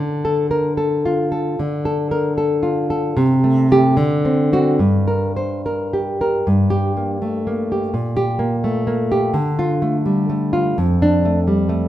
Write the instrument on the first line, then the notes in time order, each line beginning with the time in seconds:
nylon-string guitar
Already playing: D3
0.25 A4
0.51 A#4
0.77 A4
1.06 F4
1.32 A4
1.59 D3
1.85 A4
2.11 A#4
2.38 A4
2.63 F4
2.90 A4
3.17 C3
3.44 A3
3.71 A3 G4
3.97 D3
4.25 C4
4.53 C4 F#4
4.79 G2
5.08 A#4
5.37 C5
5.66 A#4
5.93 G4
6.21 A#4
6.47 G2
6.70 G4
6.97 A#3
7.22 A3
7.47 A#3
7.72 G4
7.94 A#2
8.17 G4
8.39 A#3
8.64 A3
8.87 A#3
9.12 G4
9.34 D3
9.59 F4
9.82 A3
10.06 G3
10.30 A3
10.53 F4
10.78 F2
11.02 D4
11.25 A3
11.47 G3
11.69 A3